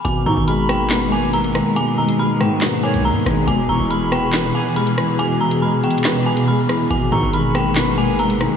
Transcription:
<<
  \new Staff \with { instrumentName = "Flute" } { \time 4/4 \key gis \minor \tempo 4 = 140 r8 cis'''8 b''4. gis''8 r4 | r2 r8 cis''8 r4 | r8 cis'''8 b''4. gis''8 r4 | r1 |
r8 cis'''8 b''4. gis''8 r4 | }
  \new Staff \with { instrumentName = "Synth bell" } { \time 4/4 \key gis \minor gis''8 ais''8 b''8 g''8 r8 gis''8 ais''4 | gis''8 ais''8 b''8 g''8 r8 gis''8 ais''4 | gis''8 ais''8 b''8 g''8 r8 gis''8 b''4 | gis''8 ais''8 b''8 g''8 r8 gis''8 b''4 |
gis''8 ais''8 b''8 g''8 r8 gis''8 ais''4 | }
  \new Staff \with { instrumentName = "Ambient pad" } { \clef bass \time 4/4 \key gis \minor << { <b, gis'>1~ | <b, gis'>1~ | <b, gis'>1~ | <b, gis'>1~ |
<b, gis'>1 | } \\ { gis1~ | gis1 | e1~ | e1 |
gis1 | } >> }
  \new Staff \with { instrumentName = "Grand piano" } { \clef bass \time 4/4 \key gis \minor b,8 dis8 gis8 ais8 b8 ais8 gis8 dis8 | b,8 dis8 gis8 ais8 b8 ais8 gis8 dis8 | b,8 e8 gis8 b8 b'8 b8 gis8 e8 | b,8 e8 gis8 b8 b'8 b8 gis8 e8 |
b,8 dis8 gis8 ais8 b8 ais8 gis8 dis8 | }
  \new Staff \with { instrumentName = "808-style bass" } { \clef bass \time 4/4 \key gis \minor gis,,8 gis,16 gis,,2. r16 | r4. gis,4~ gis,16 b,,16. gis,16. gis,,8 | e,,8 e,,16 e,,4.~ e,,16 r4. | r1 |
gis,,8 gis,16 gis,,2. r16 | }
  \new DrumStaff \with { instrumentName = "Drums" } \drummode { \time 4/4 hh4 hh8 <hh ss>8 <hc hh sn>4 hh16 hh16 <hh ss>8 | hh8. hh16 r8 <hh ss>8 <hc hh sn>8. hh16 r8 <hh ss>8 | hh4 hh8 <hh ss>8 <hc hh sn>4 hh16 hh16 <hh ss>8 | hh8. hh16 \tuplet 3/2 { r16 r16 r16 hh16 hh16 hh16 } <hc hh sn>8. hh16 r8 <hh ss>8 |
hh4 hh8 <hh ss>8 <hc hh sn>4 hh16 hh16 <hh ss>8 | }
>>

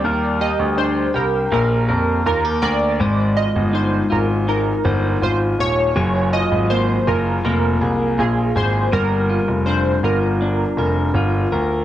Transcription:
<<
  \new Staff \with { instrumentName = "Synth keys" } { \time 4/4 \key ees \major \tempo 4 = 81 d''8 ees''8 c''8 bes'8 bes'4 bes'8 d''8~ | d''8 ees''8 c''8 bes'8 bes'4 c''8 des''8~ | des''8 ees''8 c''8 bes'8 bes'4 aes'8 c''8 | bes'4 c''8 bes'2 r8 | }
  \new Staff \with { instrumentName = "Clean electric guitar" } { \time 4/4 \key ees \major bes'8 g'8 d'8 g'8 bes8 bes'8 f'16 g'16 bes'8 | <aes c''>8 f'8 ees'8 f'8 ees'8 c''8 f'4 | <ges aes'>8 f'8 bes8 f'8 bes8 aes'8 f'8 aes'8 | <g bes'>8 f'8 d'8 f'8 d'8 bes'8 f'8 bes'8 | }
  \new Staff \with { instrumentName = "Grand piano" } { \clef bass \time 4/4 \key ees \major ees,8. d,8. c,8 bes,,8 f,8 ees,8 d,8 | aes,,8. g,,8. aes,,4 g,,8 aes,,8 ees,,8 | ges,,8. aes,,8. ges,,8 f,,8 c,8 bes,,8 aes,,8 | g,,8. f,,8. g,,4 f,,8 g,,8 d,8 | }
>>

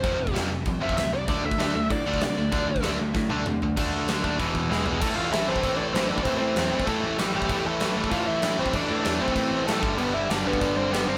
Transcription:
<<
  \new Staff \with { instrumentName = "Lead electric guitar" } { \time 4/4 \key d \dorian \tempo 4 = 193 c''4 r4. e''8 e''8 d''8 | d''8 e''4. d''4 d''4~ | d''4 r2. | r2. <gis gis'>8 <gis gis'>8 |
\key a \minor <a a'>8 <f' f''>8 <e' e''>8 <c' c''>4 <d' d''>8 <c' c''>8 <d' d''>8 | <c' c''>8 <c' c''>4. <a a'>4 <g g'>8 <g g'>8~ | <g g'>8 <a a'>4. <f' f''>8 <e' e''>4 <c' c''>8 | <d' d''>4. <c' c''>4. <a a'>8 <a a'>8 |
<b b'>8 <e' e''>8 <d' d''>8 <b b'>4 <c' c''>8 <b b'>8 <c' c''>8 | }
  \new Staff \with { instrumentName = "Distorted electric guitar" } { \clef bass \time 4/4 \key d \dorian <f, c f>8 <f, c>8 <f, c f>8 <f, c>8 <f, c>8 <f, c f>8 <f, c>8 <f, c>8 | <d a d'>8 <d a>8 <d a d'>8 <d a>8 <d a>8 <d a d'>8 <d a>8 <d a>8 | <d a d'>8 <d a>8 <d a d'>8 <d a>8 <d a>8 <d a d'>8 <d a>8 <d a>8 | <d a d'>4 <d a d'>8 <d a d'>8 <e, b, e>4 <e, b, e>8 <e, b, e>8 |
\key a \minor <a, e a>4 <a, e a>8 <a, e a>8 <a, e a>4 <a, e a>8 <a, e a>8 | <a, e a>4 <a, e a>8 <a, e a>8 <a, e a>4 <a, e a>8 <a, e a>8 | <a, e a>4 <a, e a>8 <a, e a>8 <a, e a>4 <a, e a>8 <a, e a>8 | <a, e a>4 <a, e a>8 <a, e a>8 <a, e a>4 <a, e a>8 <g, d g>8 |
<g, d g>4 <g, d g>8 <g, d g>8 <g, d g>4 <g, d g>8 <g, d g>8 | }
  \new Staff \with { instrumentName = "Picked electric bass" } { \clef bass \time 4/4 \key d \dorian f,,8 f,,8 f,,8 f,,8 c,8 f,,8 d,8 c,8 | d,8 d,8 d,8 d,8 a,8 d,8 c8 d,8 | d,8 d,8 d,8 d,8 a,8 d,8 c8 d,8 | d,8 d,8 d,8 dis,8 e,,8 e,,8 e,,8 e,,8 |
\key a \minor a,,8 a,,8 a,,8 a,,8 a,,8 a,,8 a,,8 a,,8 | a,,8 a,8 e,8 a,,8 a,8 a,,8 a,,8 a,,8 | a,,8 a,,8 a,,8 a,,8 a,,8 a,,8 a,,8 a,,8 | a,,8 a,8 e,8 a,,8 a,8 a,,8 a,,8 g,,8 |
g,,8 g,,8 g,,8 g,,8 g,,8 g,,8 g,,8 g,,8 | }
  \new DrumStaff \with { instrumentName = "Drums" } \drummode { \time 4/4 <cymc bd>8. bd16 <cymc sn>4 <cymc bd>8. bd16 <cymc sn>4 | <cymc bd>8. bd16 <cymc sn>4 <cymc bd>8. bd16 <cymc sn>4 | <cymc bd>8. bd16 <cymc sn>4 <bd sn>8 tommh8 toml8 tomfh8 | <cymc bd>4 <cymc sn>8 bd8 <cymc bd>8 bd8 sn8 tomfh8 |
<cymc bd>4 <cymc sn>8. bd16 <cymc bd>4 <cymc sn>8. bd16 | <cymc bd>4 <cymc sn>8. bd16 <cymc bd>4 <cymc sn>8. bd16 | <cymc bd>4 <cymc sn>8. bd16 <cymc bd>4 <cymc sn>8. bd16 | <cymc bd>4 <cymc sn>8. bd16 <cymc bd>4 <cymc sn>8 bd8 |
cymc4 <cymc sn>8. bd16 <cymc bd>4 <cymc sn>4 | }
>>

